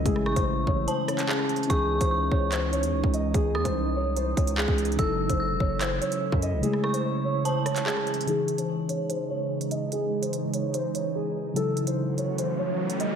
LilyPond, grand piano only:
\new Staff \with { instrumentName = "Grand piano" } { \time 4/4 \key cis \minor \tempo 4 = 146 gis'8. bis'8. cis''8 bis'8 cis''8 gis'4 | gis'8. bis'8. cis''8 bis'8 cis''4 dis''8 | gis'8. bis'8. cis''8 bis'8 cis''8 gis'4 | a'8. bis'8. cis''8 bis'8 cis''4 dis''8 |
gis'8. bis'8. cis''8 bis'8 cis''8 gis'4 | gis'8. bis'8. cis''8 bis'8 cis''4 dis''8 | gis'8. bis'8. cis''8 bis'8 cis''8 gis'4 | a'8. bis'8. cis''8 bis'8 cis''4 dis''8 | }